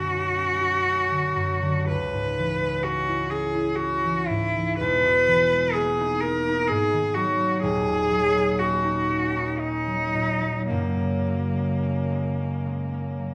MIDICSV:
0, 0, Header, 1, 3, 480
1, 0, Start_track
1, 0, Tempo, 958466
1, 422, Tempo, 1034483
1, 902, Time_signature, 3, 2, 24, 8
1, 902, Tempo, 944882
1, 1862, Tempo, 1022147
1, 2342, Tempo, 952381
1, 4262, Tempo, 1013514
1, 4742, Tempo, 1073345
1, 5222, Tempo, 1104972
1, 6375, End_track
2, 0, Start_track
2, 0, Title_t, "Cello"
2, 0, Program_c, 0, 42
2, 0, Note_on_c, 0, 66, 101
2, 899, Note_off_c, 0, 66, 0
2, 902, Note_on_c, 0, 71, 100
2, 1388, Note_on_c, 0, 66, 102
2, 1396, Note_off_c, 0, 71, 0
2, 1625, Note_on_c, 0, 68, 88
2, 1633, Note_off_c, 0, 66, 0
2, 1858, Note_on_c, 0, 66, 101
2, 1865, Note_off_c, 0, 68, 0
2, 2098, Note_on_c, 0, 64, 103
2, 2105, Note_off_c, 0, 66, 0
2, 2337, Note_off_c, 0, 64, 0
2, 2340, Note_on_c, 0, 71, 117
2, 2813, Note_on_c, 0, 68, 102
2, 2820, Note_off_c, 0, 71, 0
2, 3056, Note_on_c, 0, 70, 110
2, 3063, Note_off_c, 0, 68, 0
2, 3293, Note_on_c, 0, 68, 109
2, 3300, Note_off_c, 0, 70, 0
2, 3529, Note_on_c, 0, 66, 98
2, 3537, Note_off_c, 0, 68, 0
2, 3766, Note_off_c, 0, 66, 0
2, 3769, Note_on_c, 0, 68, 122
2, 4256, Note_on_c, 0, 66, 91
2, 4264, Note_off_c, 0, 68, 0
2, 4735, Note_on_c, 0, 63, 104
2, 4742, Note_off_c, 0, 66, 0
2, 5213, Note_off_c, 0, 63, 0
2, 5216, Note_on_c, 0, 58, 81
2, 6375, Note_off_c, 0, 58, 0
2, 6375, End_track
3, 0, Start_track
3, 0, Title_t, "Harp"
3, 0, Program_c, 1, 46
3, 0, Note_on_c, 1, 35, 65
3, 0, Note_on_c, 1, 42, 48
3, 0, Note_on_c, 1, 50, 51
3, 0, Note_on_c, 1, 57, 51
3, 0, Note_on_c, 1, 59, 44
3, 0, Note_on_c, 1, 61, 58
3, 0, Note_on_c, 1, 62, 56
3, 70, Note_on_c, 1, 66, 61
3, 180, Note_off_c, 1, 61, 0
3, 186, Note_on_c, 1, 61, 61
3, 299, Note_off_c, 1, 66, 0
3, 305, Note_on_c, 1, 66, 62
3, 343, Note_off_c, 1, 59, 0
3, 417, Note_off_c, 1, 61, 0
3, 423, Note_on_c, 1, 61, 62
3, 539, Note_off_c, 1, 50, 0
3, 545, Note_on_c, 1, 50, 52
3, 653, Note_off_c, 1, 42, 0
3, 659, Note_on_c, 1, 42, 61
3, 775, Note_off_c, 1, 50, 0
3, 781, Note_on_c, 1, 50, 61
3, 898, Note_on_c, 1, 37, 73
3, 913, Note_off_c, 1, 62, 0
3, 922, Note_off_c, 1, 42, 0
3, 922, Note_off_c, 1, 50, 0
3, 925, Note_off_c, 1, 35, 0
3, 925, Note_off_c, 1, 66, 0
3, 927, Note_off_c, 1, 57, 0
3, 1030, Note_on_c, 1, 44, 58
3, 1161, Note_on_c, 1, 52, 58
3, 1276, Note_on_c, 1, 56, 59
3, 1385, Note_off_c, 1, 61, 0
3, 1391, Note_on_c, 1, 61, 69
3, 1513, Note_on_c, 1, 64, 72
3, 1622, Note_off_c, 1, 61, 0
3, 1628, Note_on_c, 1, 61, 68
3, 1742, Note_off_c, 1, 64, 0
3, 1748, Note_on_c, 1, 64, 70
3, 1866, Note_off_c, 1, 61, 0
3, 1872, Note_on_c, 1, 61, 70
3, 1988, Note_off_c, 1, 52, 0
3, 1994, Note_on_c, 1, 52, 56
3, 2105, Note_off_c, 1, 44, 0
3, 2111, Note_on_c, 1, 44, 63
3, 2230, Note_off_c, 1, 52, 0
3, 2236, Note_on_c, 1, 52, 66
3, 2350, Note_on_c, 1, 28, 73
3, 2353, Note_on_c, 1, 40, 78
3, 2361, Note_off_c, 1, 37, 0
3, 2368, Note_off_c, 1, 44, 0
3, 2368, Note_off_c, 1, 61, 0
3, 2370, Note_off_c, 1, 52, 0
3, 2472, Note_on_c, 1, 47, 59
3, 2588, Note_on_c, 1, 52, 63
3, 2707, Note_off_c, 1, 56, 0
3, 2713, Note_on_c, 1, 56, 55
3, 2832, Note_on_c, 1, 58, 68
3, 2953, Note_on_c, 1, 63, 73
3, 3068, Note_off_c, 1, 58, 0
3, 3074, Note_on_c, 1, 58, 76
3, 3188, Note_off_c, 1, 63, 0
3, 3194, Note_on_c, 1, 63, 70
3, 3306, Note_on_c, 1, 44, 84
3, 3319, Note_off_c, 1, 52, 0
3, 3322, Note_off_c, 1, 47, 0
3, 3323, Note_off_c, 1, 28, 0
3, 3323, Note_off_c, 1, 64, 0
3, 3324, Note_off_c, 1, 40, 0
3, 3420, Note_on_c, 1, 51, 59
3, 3535, Note_on_c, 1, 54, 69
3, 3649, Note_off_c, 1, 58, 0
3, 3655, Note_on_c, 1, 58, 67
3, 3772, Note_on_c, 1, 27, 77
3, 3779, Note_on_c, 1, 39, 79
3, 3795, Note_off_c, 1, 51, 0
3, 3797, Note_off_c, 1, 44, 0
3, 3798, Note_off_c, 1, 56, 0
3, 3901, Note_on_c, 1, 46, 60
3, 4012, Note_off_c, 1, 54, 0
3, 4018, Note_on_c, 1, 54, 63
3, 4135, Note_off_c, 1, 58, 0
3, 4141, Note_on_c, 1, 58, 61
3, 4260, Note_on_c, 1, 61, 70
3, 4373, Note_off_c, 1, 63, 0
3, 4379, Note_on_c, 1, 63, 66
3, 4492, Note_off_c, 1, 61, 0
3, 4498, Note_on_c, 1, 61, 64
3, 4616, Note_off_c, 1, 63, 0
3, 4622, Note_on_c, 1, 63, 64
3, 4737, Note_off_c, 1, 61, 0
3, 4742, Note_on_c, 1, 61, 61
3, 4853, Note_off_c, 1, 54, 0
3, 4858, Note_on_c, 1, 54, 52
3, 4975, Note_off_c, 1, 46, 0
3, 4980, Note_on_c, 1, 46, 61
3, 5095, Note_off_c, 1, 54, 0
3, 5100, Note_on_c, 1, 54, 61
3, 5226, Note_on_c, 1, 30, 64
3, 5230, Note_on_c, 1, 42, 68
3, 5243, Note_off_c, 1, 27, 0
3, 5244, Note_off_c, 1, 63, 0
3, 5245, Note_off_c, 1, 39, 0
3, 5245, Note_off_c, 1, 46, 0
3, 5356, Note_on_c, 1, 49, 49
3, 5469, Note_off_c, 1, 54, 0
3, 5474, Note_on_c, 1, 54, 54
3, 5601, Note_on_c, 1, 56, 53
3, 5713, Note_off_c, 1, 61, 0
3, 5718, Note_on_c, 1, 61, 59
3, 5832, Note_off_c, 1, 56, 0
3, 5838, Note_on_c, 1, 56, 62
3, 5905, Note_off_c, 1, 58, 0
3, 5959, Note_off_c, 1, 61, 0
3, 5964, Note_on_c, 1, 61, 62
3, 6075, Note_off_c, 1, 56, 0
3, 6080, Note_on_c, 1, 56, 63
3, 6195, Note_off_c, 1, 61, 0
3, 6200, Note_on_c, 1, 61, 58
3, 6307, Note_off_c, 1, 54, 0
3, 6312, Note_on_c, 1, 54, 48
3, 6375, Note_off_c, 1, 30, 0
3, 6375, Note_off_c, 1, 42, 0
3, 6375, Note_off_c, 1, 49, 0
3, 6375, Note_off_c, 1, 54, 0
3, 6375, Note_off_c, 1, 56, 0
3, 6375, Note_off_c, 1, 61, 0
3, 6375, End_track
0, 0, End_of_file